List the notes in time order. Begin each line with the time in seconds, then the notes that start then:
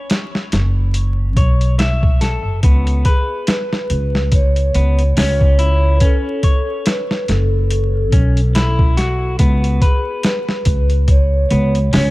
Already playing: C#5
0.10 snare, closed hi-hat
0.35 snare
0.52 F#1, snare, closed hi-hat
0.94 closed hi-hat
1.37 B1 C#5, kick, closed hi-hat
1.61 closed hi-hat
1.79 E5, snare, closed hi-hat
2.03 kick
2.21 A4, snare, closed hi-hat
2.45 F#1
2.63 C#2 B3, kick, closed hi-hat
2.87 closed hi-hat
3.05 G#4 B4, kick, closed hi-hat
3.47 B4, snare, closed hi-hat
3.73 snare
3.90 C#2, closed hi-hat
4.15 snare
4.32 C#5, kick, closed hi-hat
4.56 closed hi-hat
4.74 C#2 B3, closed hi-hat
4.98 closed hi-hat
5.17 C#2 C#4 C#5, snare, open hi-hat
5.41 kick
5.59 E4, closed hi-hat
5.97 B4, closed hi-hat
6.01 C#4 A4, kick
6.43 C#5, kick, closed hi-hat
6.86 B4, snare, closed hi-hat
7.11 snare
7.28 F#1 A4, snare, closed hi-hat
7.71 closed hi-hat
8.12 B1 C#4, kick, closed hi-hat
8.37 closed hi-hat
8.55 E4, snare, closed hi-hat
8.79 kick
8.97 F#4, snare, closed hi-hat
9.39 C#2 B3, kick, closed hi-hat
9.64 closed hi-hat
9.82 G#4 B4, kick, closed hi-hat
10.23 B4, snare, closed hi-hat
10.49 snare
10.65 C#2, kick, closed hi-hat
10.90 closed hi-hat
11.08 C#5, kick, closed hi-hat
11.51 C#2 B3, closed hi-hat
11.75 closed hi-hat
11.93 C#2 C#4 C#5, snare, open hi-hat